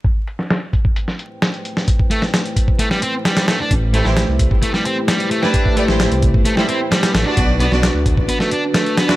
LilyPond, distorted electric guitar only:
\new Staff \with { instrumentName = "Distorted electric guitar" } { \time 4/4 \key a \dorian \tempo 4 = 131 r1 | r8 a16 r4 r16 a16 g16 c'16 r16 g8 a16 d'16 | r8 a16 r4 r16 a16 g16 c'16 r16 g8 a16 d'16~ | d'8 a16 r4 r16 a16 g16 c'16 r16 g8 a16 d'16 |
r8 b16 r4 r16 b16 a16 d'16 r16 a8 b16 e'16 | }